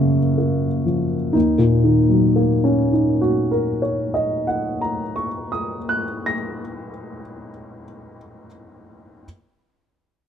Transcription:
Already playing: F#2 C#3 F3 A#3 F#4
0.38 A#3
0.86 F3
1.33 D#2 D#4
1.58 A#2
1.84 D#3
2.09 F#3
2.36 A#3
2.64 C#4
2.93 D#4
3.21 F#4
3.51 A#4
3.82 C#5
4.14 D#5
4.47 F#5
4.81 A#5
5.16 C#6
5.52 D#6
5.89 F#6
6.26 A#6

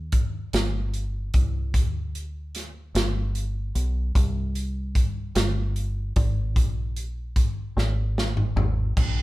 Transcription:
Already playing: D#2
0.12 kick, closed hi-hat
0.53 G1, snare, closed hi-hat
0.94 closed hi-hat
1.34 C2, kick, closed hi-hat
1.74 D2, kick, closed hi-hat
2.15 closed hi-hat
2.55 snare, closed hi-hat
2.95 G1, snare, closed hi-hat
3.35 closed hi-hat
3.75 B1, closed hi-hat
4.15 C2, kick, closed hi-hat
4.55 closed hi-hat
4.95 kick, closed hi-hat
5.35 G1, snare, closed hi-hat
5.76 closed hi-hat
6.16 G#1, kick, closed hi-hat
6.56 A#1, kick, closed hi-hat
6.97 closed hi-hat
7.36 kick, closed hi-hat
7.77 G#1, snare
8.18 snare
8.37 mid tom
8.56 G#1, floor tom
8.97 A#1, kick, crash

